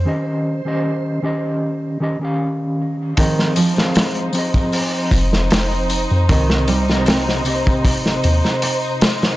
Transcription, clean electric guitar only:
X:1
M:4/4
L:1/16
Q:1/4=77
K:Fm
V:1 name="Clean electric guitar"
[E,DGe]3 [E,DGe]3 [E,DGe]4 [E,DGe] [E,DGf]4- [E,DGf] | [F,CAe]3 [F,CAf]3 [F,CAe]8- [F,CAe]2 | [C,CGe]3 [C,CGe]3 [C,CGe]8- [C,CGe]2 |]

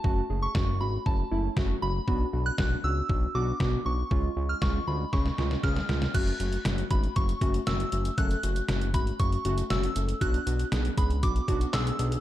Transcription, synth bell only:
X:1
M:4/4
L:1/16
Q:1/4=118
K:F#m
V:1 name="Synth bell"
a3 c'3 b2 a4 z2 b2- | b3 f'3 e'4 d'4 c'2- | c'3 ^e' c'2 b2 c'4 e'4 | f'6 b2 c'4 e'4 |
f'6 b2 c'4 e'4 | f'6 b2 d'4 e'4 |]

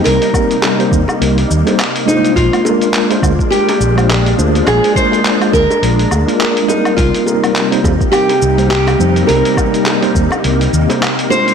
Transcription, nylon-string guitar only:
X:1
M:4/4
L:1/8
Q:"Swing 16ths" 1/4=104
K:Cm
V:1 name="Nylon-string guitar"
B4 z3 E | F4 G3 z | A c2 B4 E | F4 G2 G2 |
B4 z3 c |]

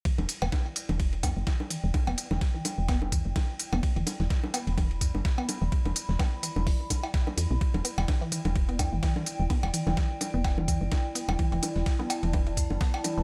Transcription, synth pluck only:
X:1
M:4/4
L:1/16
Q:"Swing 16ths" 1/4=127
K:Em
V:1 name="Synth pluck" clef=bass
E, z2 B, z E, z E, z2 B, z E, z E, z | z B, z E, z E, z2 B, z E, z E, z2 B, | z E, z E, z2 B, z E, z E, z2 B, z E, | z E, z2 B, z E, z E, z2 E z B, z B, |
z2 B, z E, E, E, z2 B, z E, E, E, z2 | B, z E, E, E, z2 B, z E, E, E, z2 B, z | E, E, E, z2 B, z E, E, E, z2 B, z E, E, |]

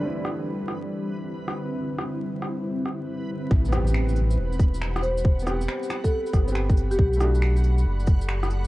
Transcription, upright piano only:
X:1
M:4/4
L:1/16
Q:"Swing 16ths" 1/4=138
K:Ador
V:1 name="Upright piano"
[D,G,A,CE]16- | [D,G,A,CE]16 | z2 [B,CG]12- [B,CG]2- | [B,CG]2 [B,CG]8- [B,CG] [B,CG]4- [B,CG] |
z2 [A,DF]12- [A,DF]2 |]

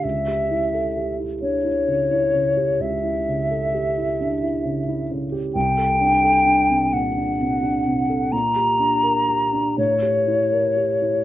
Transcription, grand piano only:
X:1
M:12/8
L:1/16
Q:3/8=43
K:Aphr
V:1 name="Grand piano"
^C,, G E A G E D E ^C, E C, G C,, E C, A G E D E C, E C, G | C,, A D A D C, B,, D C, D C, A B,, G D B G D A,, G E B G E |]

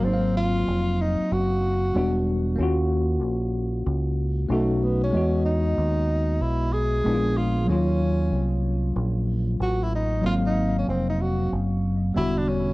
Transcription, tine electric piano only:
X:1
M:4/4
L:1/8
Q:"Swing 16ths" 1/4=94
K:Abmix
V:1 name="Tine electric piano"
[G,B,CEf]6 [=G,=B,=D_G]2 | [B,DFG]6 [=A,^C^D^F]2 | [^G,=B,^F^d]6 [A,_C=D_F=F]2 | [G,B,DF]8 |
[G,B,Cf]6 [=D,=G,=B,_G]2 |]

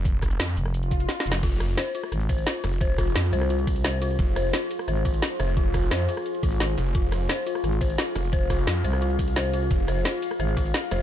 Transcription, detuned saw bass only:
X:1
M:4/4
L:1/8
Q:1/4=174
K:Fm
V:1 name="Detuned saw bass" clef=bass
F,,,2 F,, z4 z | F,,,2 z4 z F,,,- | F,,,2 F,, z4 z | F,,,2 z4 z F,,,- |
F,,,2 F,, z4 F,,, | F,,,2 z4 z F,,,- | F,,,2 F,, z4 z | F,,,2 z4 z F,,, |]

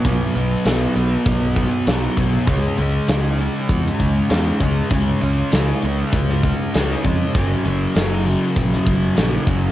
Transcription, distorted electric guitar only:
X:1
M:4/4
L:1/8
Q:1/4=99
K:C#dor
V:1 name="Distorted electric guitar" clef=bass
[B,,F,B,] [F,B,] [B,,F,B,] [F,B,]3 [B,,F,B,] [F,B,] | [C,G,C] [G,C] [C,G,C] [G,C]3 [C,G,C] [G,C] | [C,G,C] [G,C] [C,G,C] [G,C]3 [C,G,C] [G,C] | [F,,C,F,] [C,F,] [F,,C,F,] [C,F,]3 [F,,C,F,] [C,F,] |]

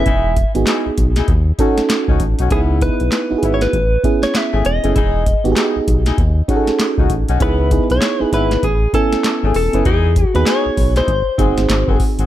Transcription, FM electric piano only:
X:1
M:4/4
L:1/16
Q:"Swing 16ths" 1/4=98
K:C#m
V:1 name="FM electric piano"
z3 [B,DFG]4- [B,DFG] z2 [CDFA]4- [CDFA] z | [B,DEG]2 [B,DEB]3 [B,DEFG]3 z2 [B,CEG]4 z [B,CEG] | z3 [B,DF=G^G]4- [B,DF=G^G] z2 [CDFGA]4- [CDFGA] z | [B,DEG]2 [B,DEG]3 [B,DEG]3 z2 [B,CEg]4 z [B,CEB] |
z3 [B,DFG]4- [B,DFG] z2 [^B,DFG]4- [B,DFG] z |]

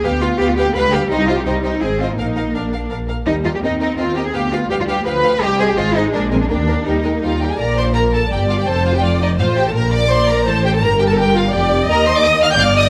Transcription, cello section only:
X:1
M:3/4
L:1/16
Q:1/4=168
K:Eb
V:1 name="Cello section"
G2 F2 G F G2 =B2 G2 | E2 F G E2 E2 A2 F E | E4 D4 z4 | E2 F G E2 E2 F2 G A |
G2 F2 G F G2 =B4 | G2 A G F2 E2 D2 C D | D4 E6 z2 | [K:Bb] B,,8 G,,4 |
F,,8 A,,4 | B,,8 A,,4 | G,,8 F,,4 | [K:Eb] E,,8 G,,4 |]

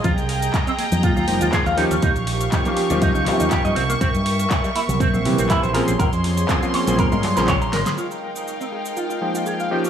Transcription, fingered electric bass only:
X:1
M:4/4
L:1/16
Q:"Swing 16ths" 1/4=121
K:Fm
V:1 name="Fingered electric bass" clef=bass
F,, C,,3 z3 F,, z E,, F,,, E,, z E,, z E,, | E,, B,,,3 z3 E,, z D,, C, E,, z G,, C,, z | C,, G,,3 z3 C,, z B,,, C, B,,, z B,,, z B,,, | B,,, F,,3 z3 B,,, z A,, G,, B,,,3 A,,, z |
z16 |]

